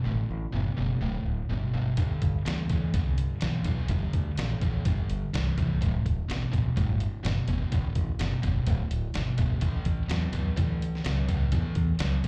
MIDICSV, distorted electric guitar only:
0, 0, Header, 1, 2, 480
1, 0, Start_track
1, 0, Tempo, 477707
1, 60, Time_signature, 4, 2, 24, 8
1, 12336, End_track
2, 0, Start_track
2, 0, Title_t, "Distorted electric guitar"
2, 0, Program_c, 0, 30
2, 44, Note_on_c, 0, 38, 71
2, 55, Note_on_c, 0, 45, 75
2, 486, Note_off_c, 0, 38, 0
2, 492, Note_off_c, 0, 45, 0
2, 530, Note_on_c, 0, 38, 78
2, 533, Note_on_c, 0, 47, 76
2, 753, Note_off_c, 0, 38, 0
2, 755, Note_off_c, 0, 47, 0
2, 773, Note_on_c, 0, 38, 71
2, 784, Note_on_c, 0, 47, 81
2, 996, Note_off_c, 0, 38, 0
2, 1001, Note_off_c, 0, 47, 0
2, 1015, Note_on_c, 0, 38, 72
2, 1020, Note_on_c, 0, 45, 82
2, 1454, Note_off_c, 0, 38, 0
2, 1456, Note_off_c, 0, 45, 0
2, 1505, Note_on_c, 0, 38, 67
2, 1509, Note_on_c, 0, 47, 76
2, 1723, Note_off_c, 0, 38, 0
2, 1725, Note_off_c, 0, 47, 0
2, 1748, Note_on_c, 0, 38, 59
2, 1753, Note_on_c, 0, 47, 82
2, 1965, Note_off_c, 0, 38, 0
2, 1968, Note_off_c, 0, 47, 0
2, 1980, Note_on_c, 0, 43, 67
2, 1988, Note_on_c, 0, 50, 79
2, 2419, Note_off_c, 0, 43, 0
2, 2422, Note_off_c, 0, 50, 0
2, 2464, Note_on_c, 0, 52, 80
2, 2465, Note_on_c, 0, 43, 69
2, 2685, Note_off_c, 0, 43, 0
2, 2685, Note_off_c, 0, 52, 0
2, 2710, Note_on_c, 0, 43, 70
2, 2714, Note_on_c, 0, 52, 71
2, 2928, Note_off_c, 0, 43, 0
2, 2930, Note_off_c, 0, 52, 0
2, 2956, Note_on_c, 0, 43, 68
2, 2963, Note_on_c, 0, 50, 82
2, 3388, Note_off_c, 0, 43, 0
2, 3392, Note_off_c, 0, 50, 0
2, 3440, Note_on_c, 0, 43, 74
2, 3445, Note_on_c, 0, 52, 79
2, 3655, Note_off_c, 0, 43, 0
2, 3657, Note_off_c, 0, 52, 0
2, 3674, Note_on_c, 0, 43, 76
2, 3683, Note_on_c, 0, 52, 77
2, 3892, Note_off_c, 0, 43, 0
2, 3897, Note_off_c, 0, 52, 0
2, 3913, Note_on_c, 0, 43, 67
2, 3921, Note_on_c, 0, 50, 78
2, 4348, Note_off_c, 0, 43, 0
2, 4353, Note_off_c, 0, 50, 0
2, 4404, Note_on_c, 0, 43, 73
2, 4408, Note_on_c, 0, 52, 65
2, 4618, Note_off_c, 0, 43, 0
2, 4620, Note_off_c, 0, 52, 0
2, 4649, Note_on_c, 0, 43, 67
2, 4651, Note_on_c, 0, 52, 79
2, 4861, Note_off_c, 0, 43, 0
2, 4862, Note_off_c, 0, 52, 0
2, 4877, Note_on_c, 0, 43, 70
2, 4883, Note_on_c, 0, 50, 80
2, 5311, Note_off_c, 0, 43, 0
2, 5314, Note_off_c, 0, 50, 0
2, 5360, Note_on_c, 0, 43, 67
2, 5371, Note_on_c, 0, 52, 85
2, 5576, Note_off_c, 0, 43, 0
2, 5582, Note_off_c, 0, 52, 0
2, 5601, Note_on_c, 0, 43, 74
2, 5608, Note_on_c, 0, 52, 75
2, 5817, Note_off_c, 0, 43, 0
2, 5821, Note_off_c, 0, 52, 0
2, 5835, Note_on_c, 0, 38, 73
2, 5839, Note_on_c, 0, 45, 89
2, 6271, Note_off_c, 0, 38, 0
2, 6273, Note_off_c, 0, 45, 0
2, 6315, Note_on_c, 0, 38, 65
2, 6319, Note_on_c, 0, 47, 76
2, 6534, Note_off_c, 0, 38, 0
2, 6536, Note_off_c, 0, 47, 0
2, 6547, Note_on_c, 0, 38, 68
2, 6555, Note_on_c, 0, 47, 74
2, 6770, Note_off_c, 0, 38, 0
2, 6774, Note_off_c, 0, 47, 0
2, 6792, Note_on_c, 0, 38, 70
2, 6797, Note_on_c, 0, 45, 80
2, 7228, Note_off_c, 0, 38, 0
2, 7231, Note_off_c, 0, 45, 0
2, 7266, Note_on_c, 0, 38, 70
2, 7269, Note_on_c, 0, 47, 86
2, 7489, Note_off_c, 0, 38, 0
2, 7491, Note_off_c, 0, 47, 0
2, 7520, Note_on_c, 0, 38, 64
2, 7522, Note_on_c, 0, 47, 83
2, 7736, Note_off_c, 0, 38, 0
2, 7737, Note_off_c, 0, 47, 0
2, 7752, Note_on_c, 0, 38, 84
2, 7755, Note_on_c, 0, 45, 92
2, 8188, Note_off_c, 0, 38, 0
2, 8189, Note_off_c, 0, 45, 0
2, 8229, Note_on_c, 0, 38, 64
2, 8232, Note_on_c, 0, 47, 73
2, 8450, Note_off_c, 0, 38, 0
2, 8451, Note_off_c, 0, 47, 0
2, 8464, Note_on_c, 0, 38, 62
2, 8466, Note_on_c, 0, 47, 78
2, 8687, Note_off_c, 0, 38, 0
2, 8688, Note_off_c, 0, 47, 0
2, 8709, Note_on_c, 0, 38, 66
2, 8713, Note_on_c, 0, 45, 89
2, 9144, Note_off_c, 0, 38, 0
2, 9146, Note_off_c, 0, 45, 0
2, 9186, Note_on_c, 0, 38, 67
2, 9191, Note_on_c, 0, 47, 86
2, 9406, Note_off_c, 0, 38, 0
2, 9409, Note_off_c, 0, 47, 0
2, 9422, Note_on_c, 0, 38, 64
2, 9428, Note_on_c, 0, 47, 79
2, 9644, Note_off_c, 0, 38, 0
2, 9646, Note_off_c, 0, 47, 0
2, 9661, Note_on_c, 0, 45, 75
2, 9669, Note_on_c, 0, 52, 81
2, 10098, Note_off_c, 0, 45, 0
2, 10102, Note_off_c, 0, 52, 0
2, 10134, Note_on_c, 0, 45, 68
2, 10145, Note_on_c, 0, 54, 88
2, 10358, Note_off_c, 0, 45, 0
2, 10363, Note_off_c, 0, 54, 0
2, 10374, Note_on_c, 0, 45, 73
2, 10382, Note_on_c, 0, 54, 64
2, 10597, Note_off_c, 0, 45, 0
2, 10601, Note_off_c, 0, 54, 0
2, 10616, Note_on_c, 0, 45, 70
2, 10619, Note_on_c, 0, 52, 83
2, 11052, Note_off_c, 0, 45, 0
2, 11054, Note_off_c, 0, 52, 0
2, 11096, Note_on_c, 0, 45, 78
2, 11100, Note_on_c, 0, 54, 87
2, 11316, Note_off_c, 0, 45, 0
2, 11318, Note_off_c, 0, 54, 0
2, 11338, Note_on_c, 0, 45, 70
2, 11343, Note_on_c, 0, 54, 77
2, 11556, Note_off_c, 0, 45, 0
2, 11559, Note_off_c, 0, 54, 0
2, 11578, Note_on_c, 0, 45, 70
2, 11579, Note_on_c, 0, 52, 86
2, 12010, Note_off_c, 0, 45, 0
2, 12011, Note_off_c, 0, 52, 0
2, 12060, Note_on_c, 0, 45, 65
2, 12071, Note_on_c, 0, 54, 84
2, 12275, Note_off_c, 0, 45, 0
2, 12281, Note_off_c, 0, 54, 0
2, 12305, Note_on_c, 0, 45, 63
2, 12336, Note_off_c, 0, 45, 0
2, 12336, End_track
0, 0, End_of_file